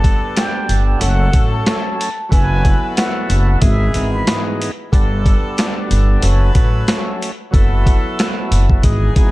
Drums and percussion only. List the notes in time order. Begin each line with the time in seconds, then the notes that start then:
0.04 kick, closed hi-hat
0.37 snare, closed hi-hat
0.69 closed hi-hat
1.01 closed hi-hat
1.33 kick, closed hi-hat
1.66 snare, closed hi-hat
2.01 closed hi-hat
2.32 kick, closed hi-hat
2.65 kick, closed hi-hat
2.97 snare, closed hi-hat
3.30 closed hi-hat
3.62 kick, closed hi-hat
3.94 closed hi-hat
4.27 snare, closed hi-hat
4.62 closed hi-hat
4.93 kick, closed hi-hat
5.26 kick, closed hi-hat
5.58 snare, closed hi-hat
5.91 closed hi-hat
6.22 closed hi-hat
6.55 kick, closed hi-hat
6.88 snare, closed hi-hat
7.22 closed hi-hat
7.54 kick, closed hi-hat
7.87 kick, closed hi-hat
8.19 snare, closed hi-hat
8.52 closed hi-hat
8.70 kick
8.83 kick, closed hi-hat
9.16 kick, closed hi-hat